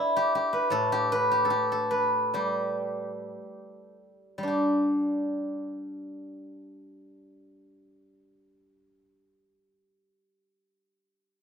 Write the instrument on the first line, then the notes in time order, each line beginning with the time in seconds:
guzheng
Already playing: E4 A4 B4 D5
0.16 G4
0.35 G4
0.53 B4
0.70 A2 A4
0.92 G4
1.12 B4
1.31 G4
1.45 A4
1.50 G4
1.72 A4
1.91 B4
2.34 G3 G4
4.38 G3
4.43 D4
4.48 G4